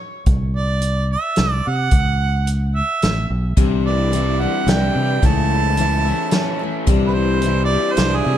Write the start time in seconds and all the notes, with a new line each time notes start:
0.26 C2, kick, closed hi-hat
0.56 D5
0.82 closed hi-hat
1.13 E5
1.36 C2, snare, closed hi-hat
1.52 D5
1.67 C3 F#5
1.91 C#2, kick, closed hi-hat
2.47 closed hi-hat
2.76 E5
3.02 A1, snare, closed hi-hat
3.30 B1
3.57 C2 C3 E3 G3 D4 E4, kick, closed hi-hat
3.86 E3 D5
4.12 E3 G3 D4 E4, closed hi-hat
4.40 G3 D4 E4 F#5
4.67 C2 E3 G3 D4 E4 G5, snare, closed hi-hat
4.96 C3 G3
5.22 C#2 C#3 E3 A3 C#4 E4 A5, kick, closed hi-hat
5.52 E3
5.77 E3 A3 C#4 E4, closed hi-hat
6.05 A3 C#4 E4
6.31 E3 A3 C#4 E4, snare, closed hi-hat
6.59 C#4 E4
6.63 A3
6.87 C2 C3 E3 G3 D4 E4, kick, closed hi-hat
7.07 B4
7.14 E3 C5
7.42 E3 G3, closed hi-hat
7.46 D4 E4
7.65 D5
7.70 G3
7.92 C5
7.97 C2 E3 G3 D4 E4, snare, closed hi-hat
8.16 G#4
8.24 C3 G3 D4 E4